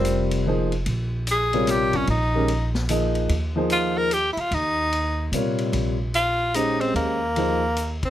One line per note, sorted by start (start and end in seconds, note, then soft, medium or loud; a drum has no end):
0.00 0.82 F1 medium
0.00 0.44 C3 medium
0.00 0.44 G3 medium
0.00 0.33 C4 medium
0.00 0.44 F4 soft
0.00 0.44 A#4 medium
0.00 0.44 C5 medium
0.05 hi-hat pedal medium
0.05 ride medium
0.31 ride medium
0.47 0.70 F3 medium
0.47 0.70 A#3 soft
0.47 0.70 D#4 medium
0.47 0.70 G#4 medium
0.47 0.71 C5 medium
0.72 ride soft
0.86 2.04 A#1 medium
0.86 ride medium
1.27 hi-hat pedal medium
1.27 ride medium
1.31 1.72 G#4 medium
1.53 2.06 C3 medium
1.53 2.05 G3 medium
1.53 2.06 F4 medium
1.53 2.06 A#4 medium
1.53 2.06 C#5 medium
1.53 ride soft
1.67 1.98 G4 medium
1.67 snare soft
1.67 hi-hat pedal soft
1.67 ride medium
1.93 2.09 C#4 medium
1.93 kick soft
1.93 ride soft
2.07 3.26 A#1 medium
2.07 2.72 D#4 medium
2.07 ride medium
2.34 2.47 D#3 medium
2.34 2.48 G#3 soft
2.34 2.48 C#4 soft
2.34 2.48 G4 soft
2.34 2.48 A#4 medium
2.48 ride medium
2.75 snare medium
2.89 3.30 F3 medium
2.89 3.30 A#3 soft
2.89 3.30 D#4 soft
2.89 3.31 G#4 soft
2.89 3.31 D#5 medium
2.89 hi-hat pedal medium
2.89 ride medium
3.15 ride soft
3.29 4.33 D#2 medium
3.29 ride medium
3.56 4.08 F3 medium
3.56 4.08 A#3 medium
3.56 4.08 D#4 medium
3.56 4.09 G#4 medium
3.56 4.09 C5 medium
3.70 3.99 F4 medium
3.70 hi-hat pedal medium
3.70 ride medium
3.98 4.15 A#4 medium
4.11 4.32 G4 medium
4.11 hi-hat pedal medium
4.11 ride medium
4.33 4.41 E4 medium
4.33 muted upright bass stroke soft
4.37 4.56 F4 medium
4.37 ride soft
4.51 5.29 D#2 medium
4.51 5.34 D#4 medium
4.51 ride soft
4.92 ride medium
5.32 5.70 A#2 medium
5.32 5.95 C3 soft
5.32 5.95 G3 medium
5.32 5.95 F4 medium
5.32 5.96 A#4 medium
5.32 5.96 C#5 medium
5.32 hi-hat pedal soft
5.32 ride medium
5.58 ride soft
5.73 6.91 A#1 medium
5.73 ride medium
6.14 6.57 F4 medium
6.14 hi-hat pedal medium
6.14 ride medium
6.54 7.16 G#3 medium
6.54 7.16 C#4 soft
6.54 6.82 D#4 medium
6.54 7.17 G4 medium
6.54 7.17 C5 soft
6.54 7.17 D#5 medium
6.54 hi-hat pedal medium
6.54 ride medium
6.81 6.95 C4 medium
6.81 ride soft
6.94 8.10 D#2 medium
6.94 7.99 A#3 medium
6.94 ride soft
7.36 7.60 F3 soft
7.36 7.60 A#3 soft
7.36 7.60 D#4 soft
7.36 7.60 G#4 soft
7.36 7.61 C5 medium
7.36 ride medium
7.76 hi-hat pedal medium
7.76 ride medium
8.03 8.10 C4 medium
8.03 kick soft
8.03 ride soft